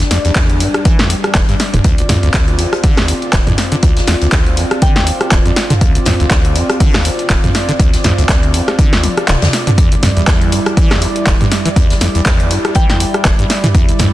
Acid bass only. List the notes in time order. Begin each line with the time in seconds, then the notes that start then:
0.11 F2
0.25 E2
0.36 E2
0.60 G2
0.85 E3
0.99 E2
1.10 F2
1.35 E1
1.49 G2
1.74 E1
1.84 D2
1.98 D2
2.09 E2
2.23 D2
2.34 D2
2.59 F2
2.84 D3
2.98 D2
3.08 E2
3.33 D1
3.47 F2
3.72 D3
3.83 D2
3.97 D2
4.08 E2
4.21 D2
4.33 D2
4.57 F2
4.82 D3
4.96 D2
5.07 E2
5.32 D1
5.45 F2
5.70 D3
5.81 D2
5.95 D2
6.06 E2
6.20 D2
6.31 D2
6.56 F2
6.80 D3
6.94 D2
7.05 E2
7.30 D1
7.44 F2
7.69 D3
7.80 D2
7.94 D2
8.04 E2
8.18 D2
8.29 D2
8.54 F2
8.79 D3
8.93 D2
9.04 E2
9.28 D1
9.42 F2
9.67 D3
9.78 E2
9.92 E2
10.03 F2
10.17 E2
10.28 E2
10.52 G2
10.77 E3
10.91 E2
11.02 F2
11.27 E1
11.41 G2
11.65 E3
11.76 E2
11.90 E2
12.01 F2
12.15 E2
12.26 E2
12.51 G2
12.75 E3
12.89 E2
13.00 F2
13.25 E1
13.39 G2
13.64 E3
13.74 E2
13.88 E2
13.99 F2